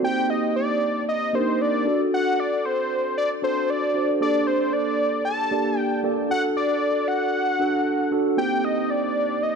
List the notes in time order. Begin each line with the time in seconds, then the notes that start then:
0.02 A#3 C4 D#4 G4 C5 G5
0.30 D#5
0.56 D5
1.09 D#5
1.33 A#3 C4 D4 G4 A#4 C5
1.40 D#4
1.62 D5
1.85 D4 F#4 A4
2.14 F#5
2.40 D5
2.65 C5
3.18 D5
3.42 D4 F#4 A4 C5
3.70 D5
3.94 D4 F#4 C5
4.20 A#3 D4 G4 A4 D5
4.47 C5
4.73 D5
5.25 A5
5.51 A#3 D4 G4 A4 D5
5.79 G5
6.03 A#3 D4 G4 A4 D5
6.29 D4 F#4 A4 F#5
6.57 D5
7.08 F#5
7.59 D4 F#4 A4
8.11 D4 F#4 A4
8.37 A#3 C4 D#4 G4 C5 G5
8.64 D#5
8.90 D5
9.43 D#5